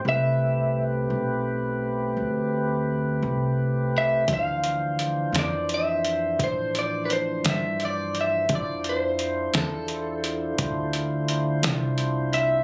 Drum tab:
HH |------------|xxxxxxxxxxxx|xxxxxxxxxxxx|
SD |------------|---o-----o--|---o-----o--|
BD |------------|o-----o-----|o-----o-----|